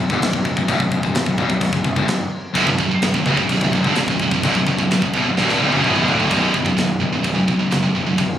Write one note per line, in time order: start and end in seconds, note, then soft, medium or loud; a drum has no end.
0.00 0.10 B1 medium
0.00 0.11 F#2 medium
0.10 0.21 G1 loud
0.10 0.21 G2 medium
0.10 0.22 D3 loud
0.10 kick medium
0.21 0.33 B0 medium
0.21 0.32 B1 medium
0.21 0.32 F#2 medium
0.21 snare loud
0.21 crash medium
0.33 0.45 B0 medium
0.33 0.44 B1 medium
0.33 0.44 F#2 medium
0.33 kick medium
0.45 0.56 B0 medium
0.45 0.56 B1 medium
0.45 0.56 F#2 medium
0.45 kick medium
0.57 0.67 B0 medium
0.57 0.68 B1 medium
0.57 0.68 F#2 medium
0.57 kick medium
0.68 0.79 D1 loud
0.68 0.79 D2 loud
0.68 0.80 A2 loud
0.68 kick loud
0.68 crash medium
0.80 0.91 B0 medium
0.80 0.90 B1 medium
0.80 0.91 F#2 medium
0.80 kick medium
0.92 1.03 B0 medium
0.92 1.03 B1 medium
0.92 1.03 F#2 medium
0.92 kick medium
1.03 1.15 B0 medium
1.03 1.13 B1 medium
1.03 1.13 F#2 medium
1.03 kick medium
1.14 1.25 B0 medium
1.14 1.25 B1 medium
1.14 1.25 F#2 medium
1.14 snare loud
1.14 crash medium
1.26 1.38 B0 medium
1.26 1.37 B1 medium
1.26 1.37 F#2 medium
1.26 kick medium
1.38 1.49 E1 loud
1.38 1.49 E2 loud
1.38 1.50 B2 loud
1.38 kick medium
1.49 1.60 B0 medium
1.49 1.59 B1 medium
1.49 1.60 F#2 medium
1.49 kick medium
1.60 1.72 B0 medium
1.60 1.72 B1 medium
1.60 1.72 F#2 medium
1.60 kick loud
1.60 crash medium
1.73 1.84 B0 medium
1.73 1.83 B1 medium
1.73 1.84 F#2 medium
1.73 kick loud
1.84 1.96 B0 medium
1.84 1.96 B1 medium
1.84 1.97 F#2 medium
1.84 kick medium
1.96 2.07 G1 loud
1.96 2.07 G2 loud
1.96 2.08 D3 loud
1.96 kick medium
2.07 2.20 B0 medium
2.07 2.20 B1 medium
2.07 2.20 F#2 medium
2.07 snare loud
2.07 crash medium
2.54 2.67 B0 medium
2.54 2.64 B1 loud
2.54 2.65 F#2 loud
2.54 kick loud
2.54 crash medium
2.65 2.78 B0 medium
2.65 2.77 B1 medium
2.65 2.77 F#2 medium
2.65 kick medium
2.78 2.90 B0 medium
2.78 2.89 B1 medium
2.78 2.91 F#2 medium
2.78 kick medium
2.90 muted distorted electric guitar stroke medium
2.90 muted fingered electric bass stroke soft
3.02 3.13 B0 medium
3.02 3.13 B1 medium
3.02 3.13 F#2 medium
3.02 snare loud
3.02 crash medium
3.14 3.25 B0 medium
3.14 3.25 B1 medium
3.14 3.25 F#2 medium
3.14 kick loud
3.25 3.37 F#1 loud
3.25 3.37 F#2 loud
3.25 3.38 C#3 loud
3.25 kick medium
3.37 3.49 B0 medium
3.37 3.48 B1 medium
3.37 3.49 F#2 medium
3.37 kick medium
3.49 3.60 B0 medium
3.49 3.59 B1 medium
3.49 3.59 F#2 medium
3.49 kick loud
3.49 crash medium
3.60 3.72 B0 medium
3.60 3.71 B1 medium
3.60 3.71 F#2 medium
3.60 kick medium
3.72 3.84 B0 medium
3.72 3.82 B1 medium
3.72 3.83 F#2 medium
3.72 kick medium
3.83 3.96 G1 loud
3.83 3.94 G2 loud
3.83 3.94 D3 loud
3.83 kick medium
3.87 3.97 G2 medium
3.94 4.08 B0 medium
3.94 4.07 B1 medium
3.94 4.07 F#2 medium
3.94 snare loud
3.94 crash medium
3.98 4.09 B1 medium
3.98 4.09 F#2 medium
4.08 4.19 B0 medium
4.08 4.18 B1 medium
4.08 4.18 F#2 medium
4.08 kick medium
4.19 4.31 B0 medium
4.19 4.30 B1 medium
4.19 4.30 F#2 medium
4.19 kick medium
4.31 4.43 B0 medium
4.31 4.43 B1 medium
4.31 4.43 F#2 medium
4.31 kick medium
4.43 4.54 D1 loud
4.43 4.54 D2 loud
4.43 4.55 A2 loud
4.43 kick loud
4.43 crash medium
4.54 4.66 B0 medium
4.54 4.66 B1 medium
4.54 4.66 F#2 medium
4.54 kick medium
4.67 4.78 B0 medium
4.67 4.78 B1 medium
4.67 4.79 F#2 medium
4.67 kick medium
4.78 4.89 B0 medium
4.78 4.89 B1 medium
4.78 4.90 F#2 medium
4.78 kick medium
4.90 5.02 B0 medium
4.90 5.02 B1 medium
4.90 5.02 F#2 medium
4.90 snare loud
4.90 crash medium
5.02 5.13 B0 medium
5.02 5.14 B1 medium
5.02 5.15 F#2 medium
5.02 kick loud
5.14 5.25 E1 medium
5.14 5.25 E2 loud
5.14 5.26 B2 loud
5.14 kick medium
5.25 5.36 B0 medium
5.25 5.38 B1 medium
5.25 5.38 F#2 medium
5.37 5.59 D1 loud
5.37 5.61 D2 medium
5.37 5.61 A2 medium
5.37 5.61 D3 loud
5.37 snare medium
5.49 snare medium
5.60 5.72 B0 loud
5.60 5.72 B1 medium
5.60 5.72 F#2 medium
5.60 high tom medium
5.72 5.83 F#1 loud
5.72 5.83 F#2 medium
5.72 5.84 C#3 loud
5.72 high tom medium
5.84 6.06 B0 medium
5.84 6.07 B1 medium
5.84 6.07 F#2 loud
5.84 6.08 B2 medium
5.84 mid tom loud
5.96 mid tom medium
6.07 6.29 D1 loud
6.07 6.30 D2 loud
6.07 6.31 A2 loud
6.07 6.31 D3 loud
6.07 floor tom medium
6.20 floor tom medium
6.31 6.47 B0 loud
6.31 6.53 B1 medium
6.31 6.54 F#2 medium
6.31 6.54 B2 medium
6.31 kick loud
6.31 crash medium
6.54 6.70 B0 medium
6.54 6.67 B1 medium
6.54 6.66 F#2 medium
6.54 kick medium
6.66 6.77 B1 medium
6.66 6.78 F#2 medium
6.66 kick medium
6.78 6.93 B0 medium
6.78 6.99 B1 medium
6.78 7.00 F#2 medium
6.78 snare loud
6.78 crash medium
7.01 7.16 B0 medium
7.01 7.12 B1 medium
7.01 7.11 F#2 medium
7.12 7.24 B1 medium
7.12 7.24 F#2 medium
7.24 7.40 B0 medium
7.24 7.36 B1 medium
7.24 7.35 F#2 medium
7.24 kick loud
7.24 crash medium
7.37 7.47 B1 medium
7.37 7.47 F#2 medium
7.48 7.59 B1 medium
7.48 7.64 B1 medium
7.48 7.59 F#2 medium
7.48 kick medium
7.60 7.70 B1 medium
7.60 7.71 F#2 medium
7.71 7.87 F#1 medium
7.71 7.82 B1 medium
7.71 7.82 F#2 loud
7.71 snare loud
7.71 crash medium
7.83 7.95 B1 medium
7.83 7.95 F#2 medium
7.95 8.10 B0 medium
7.95 8.06 B1 medium
7.95 8.05 F#2 medium
8.06 8.17 B1 medium
8.06 8.17 F#2 medium
8.18 8.34 B0 medium
8.18 8.39 B1 medium
8.18 8.39 F#2 medium
8.18 kick loud
8.18 crash medium